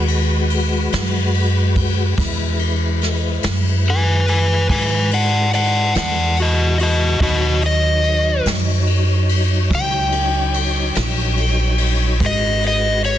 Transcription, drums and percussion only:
0.08 ride
0.50 ride
0.92 snare, ride
1.34 ride
1.76 kick, ride
2.17 kick, ride
2.59 ride
3.01 snare, ride
3.43 snare, ride
3.85 ride
4.27 ride
4.69 kick, ride
5.11 ride
5.53 ride
5.95 snare, ride
6.37 ride
6.79 ride
7.20 kick, ride
7.62 ride
8.04 ride
8.46 snare, ride
8.87 ride
9.29 ride
9.71 kick, ride
10.12 ride
10.54 ride
10.95 snare, ride
11.37 ride
11.78 ride
12.20 kick, ride
12.62 ride
13.04 ride

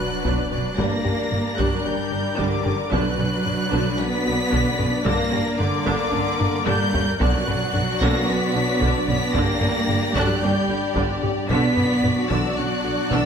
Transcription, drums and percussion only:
0.25 taiko
0.52 taiko low-mid
0.79 taiko
1.05 taiko low-mid
1.32 taiko low-mid
1.59 taiko
2.39 taiko
2.66 taiko low-mid
2.93 taiko
3.19 taiko low-mid
3.45 taiko low-mid
3.73 taiko
4.53 taiko
4.79 taiko low-mid
5.06 taiko
5.33 taiko low-mid
5.60 taiko low-mid
5.87 taiko
6.41 taiko low-mid
6.67 taiko low-mid
6.94 taiko low
7.21 taiko
7.48 taiko low-mid
7.74 taiko low-mid
8.01 taiko
8.82 taiko
9.08 taiko low-mid
9.35 taiko
9.62 taiko low-mid
9.89 taiko low-mid
10.15 taiko
10.96 taiko
11.23 taiko low-mid
11.50 taiko
11.77 taiko low-mid
12.04 taiko low-mid
12.31 taiko
13.11 taiko

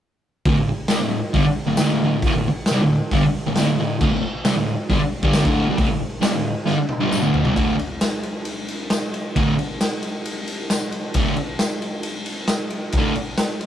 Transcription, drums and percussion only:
0.45 kick, open hi-hat
0.88 snare, open hi-hat, tambourine
1.34 kick, open hi-hat
1.77 snare, open hi-hat, tambourine
2.22 kick, open hi-hat
2.66 snare, open hi-hat, tambourine
3.11 kick, open hi-hat
3.56 snare, open hi-hat, tambourine
4.01 kick, crash
4.45 snare, open hi-hat, tambourine
4.90 kick, open hi-hat
5.23 kick
5.33 snare, open hi-hat, tambourine
5.45 kick
5.78 kick, open hi-hat
6.22 snare, open hi-hat, tambourine
6.66 snare
6.89 high tom
7.00 high tom
7.11 mid tom, tambourine
7.34 floor tom
7.45 floor tom
7.56 kick, ride
7.79 ride
8.01 snare, ride, tambourine
8.23 ride
8.45 ride
8.68 ride
8.90 snare, ride, tambourine
9.14 ride
9.36 kick, ride
9.59 ride
9.81 snare, ride, tambourine
9.92 snare
10.03 ride
10.26 ride
10.48 ride
10.70 snare, ride, tambourine
10.92 ride
11.14 kick, ride
11.37 ride
11.59 snare, ride, tambourine
11.71 snare
11.82 ride
12.03 ride
12.26 ride
12.48 snare, ride, tambourine
12.70 ride
12.92 kick, ride
13.15 ride
13.38 snare, ride, tambourine
13.49 snare
13.61 ride

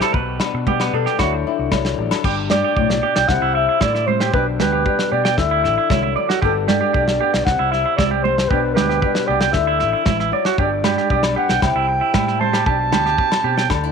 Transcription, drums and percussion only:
0.01 snare, low agogo
0.14 kick, muted conga
0.40 snare, muted conga, low agogo
0.67 kick, high conga
0.80 snare, low agogo
1.06 snare
1.19 kick, snare, muted conga, low agogo
1.72 kick, snare, high conga, low conga, low agogo
1.85 snare
1.99 muted conga
2.11 snare, low agogo
2.24 kick, crash, muted conga
2.50 snare, muted conga, high conga
2.77 kick
2.90 snare
3.16 snare
3.28 kick, snare, muted conga
3.81 kick, snare, high conga
3.95 snare
4.08 muted conga, high conga
4.21 snare
4.34 kick
4.60 snare, muted conga, high conga
4.86 kick
4.99 snare
5.25 snare
5.38 kick, snare, muted conga
5.64 snare
5.90 kick, snare, high conga, low conga
6.17 muted conga
6.30 snare
6.42 kick, muted conga
6.68 snare, muted conga, high conga
6.94 kick
7.08 snare
7.34 snare
7.47 kick, snare, muted conga
7.73 snare
7.99 kick, snare, high conga
8.25 muted conga, high conga
8.38 snare
8.51 kick, muted conga
8.77 snare, muted conga, high conga
8.90 snare
9.02 kick
9.15 snare
9.41 snare
9.53 kick, snare, muted conga
9.79 snare
10.06 kick, snare, high conga, low conga
10.19 snare
10.33 muted conga
10.45 snare
10.58 kick, muted conga
10.84 snare, muted conga, high conga, low agogo
10.97 snare
11.10 kick
11.23 snare, low agogo
11.49 snare
11.62 kick, snare, muted conga, low agogo
12.14 kick, snare, high conga, low agogo
12.27 snare
12.41 muted conga, high conga
12.53 snare, low agogo
12.66 kick, muted conga
12.92 snare, muted conga, high conga, low agogo
13.06 snare
13.18 kick
13.32 snare, low agogo
13.58 snare
13.70 kick, snare, muted conga, low agogo

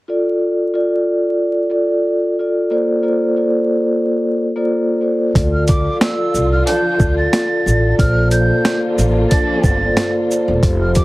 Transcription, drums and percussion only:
5.35 kick, closed hi-hat
5.68 kick, closed hi-hat, shaker
6.01 snare, closed hi-hat
6.35 shaker
6.67 closed hi-hat
7.00 kick, shaker
7.33 snare, closed hi-hat
7.68 shaker
7.99 kick, closed hi-hat
8.31 closed hi-hat, shaker
8.65 snare, closed hi-hat
8.99 shaker
9.31 kick, closed hi-hat
9.64 kick, shaker
9.97 snare, closed hi-hat
10.31 shaker
10.63 kick, closed hi-hat
10.95 kick, closed hi-hat, shaker

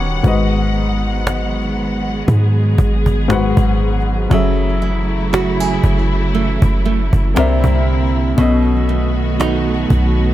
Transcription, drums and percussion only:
0.24 cajon bass
0.76 cajon slap
1.27 cajon slap
1.77 cajon slap
2.28 cajon bass
2.78 cajon bass
3.06 cajon bass
3.30 cajon slap
3.57 cajon bass
3.80 cajon slap
4.31 cajon bass
5.34 cajon slap
5.84 cajon bass
6.35 cajon slap
6.62 cajon bass
6.85 cajon slap
7.13 cajon bass
7.37 cajon slap
7.64 cajon bass
7.87 cajon slap
8.38 cajon bass
8.90 cajon slap
9.41 cajon slap
9.90 cajon bass

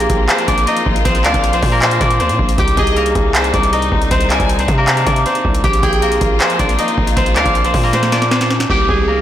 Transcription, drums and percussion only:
0.00 closed hi-hat
0.10 kick, closed hi-hat
0.29 clap, closed hi-hat
0.38 closed hi-hat
0.48 kick, closed hi-hat
0.58 closed hi-hat
0.67 closed hi-hat
0.77 closed hi-hat
0.86 kick
0.96 closed hi-hat
1.05 kick, closed hi-hat
1.15 closed hi-hat
1.24 clap, closed hi-hat
1.34 kick, closed hi-hat
1.44 closed hi-hat
1.53 closed hi-hat
1.62 kick, open hi-hat
1.82 clap, closed hi-hat
1.91 closed hi-hat
2.01 kick, closed hi-hat
2.11 closed hi-hat
2.20 closed hi-hat
2.29 closed hi-hat
2.39 kick
2.49 closed hi-hat
2.58 kick, closed hi-hat
2.68 closed hi-hat
2.77 kick, closed hi-hat
2.87 closed hi-hat
2.96 closed hi-hat
3.06 closed hi-hat
3.15 kick, closed hi-hat
3.35 clap, closed hi-hat
3.44 closed hi-hat
3.54 kick, closed hi-hat
3.63 closed hi-hat
3.73 closed hi-hat
3.82 closed hi-hat
3.92 kick
4.02 closed hi-hat
4.11 kick, closed hi-hat
4.21 closed hi-hat
4.30 clap, closed hi-hat
4.40 kick, closed hi-hat
4.49 closed hi-hat
4.59 closed hi-hat
4.68 kick, closed hi-hat
4.87 clap, closed hi-hat
4.97 closed hi-hat
5.07 kick, closed hi-hat
5.16 closed hi-hat
5.26 closed hi-hat
5.35 closed hi-hat
5.45 kick
5.54 closed hi-hat
5.64 kick, closed hi-hat
5.73 closed hi-hat
5.83 kick, closed hi-hat
5.93 closed hi-hat
6.02 closed hi-hat
6.12 closed hi-hat
6.21 kick, closed hi-hat
6.40 clap, closed hi-hat
6.50 closed hi-hat
6.59 kick, closed hi-hat
6.69 closed hi-hat
6.79 closed hi-hat
6.88 closed hi-hat
6.98 kick
7.07 closed hi-hat
7.17 kick, closed hi-hat
7.26 closed hi-hat
7.36 clap, closed hi-hat
7.45 kick, closed hi-hat
7.55 closed hi-hat
7.65 closed hi-hat
7.74 kick, open hi-hat
7.93 snare, closed hi-hat
8.03 snare, closed hi-hat
8.12 snare, closed hi-hat
8.22 snare, closed hi-hat
8.31 snare, closed hi-hat
8.41 snare, closed hi-hat
8.51 snare
8.60 snare, closed hi-hat
8.70 kick
8.89 kick

